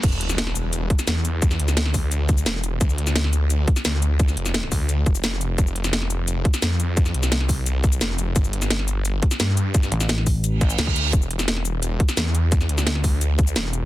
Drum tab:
CC |x---------------|----------------|----------------|----------------|
HH |x-x-x-x-x-x-x-x-|x-x-x-o-x-x-x-x-|x-x-x-x-x-x-x-x-|x-x-x-o-x-x-x-x-|
SH |xx-x--x-x--xx-x-|xx-x--x-x-xxx-x-|xx-x--x-x--xx-x-|xx-x--x-x-xxx-x-|
SD |---ooo-----oo---|-o-ooo------o---|---ooo-----oo---|-o-ooo------o---|
BD |o---------o-----|o-----o---o-----|o---------o-----|o-----o---o-----|

CC |----------------|----------------|----------------|----------------|
HH |x-x-x-x-x-x-x-x-|x-x-x-o-x-x-x-x-|x-x-x-x-x-x-x-x-|x-x-x-o-x-x-x-x-|
SH |xx-x--x-x--xx-x-|xx-x--x-x-xxx-x-|xx-x--x-x--xx-x-|xx-xx-x-x-xxx-x-|
SD |---ooo-----oo---|-o-ooo------o---|---ooo-----oo---|-o-ooo------o---|
BD |o---------o-----|o-----o---o-----|o---------o-----|o-----o---o--o--|

CC |----------------|----------------|
HH |x-x-x-x-x-x-x-x-|x-x-x-o-x-x-x-x-|
SH |xx-x--x-x--xx-x-|xx-x--x-x-xxx-x-|
SD |---ooo-----oo---|-o-ooo------o---|
BD |o---------o-----|o-----o---o-----|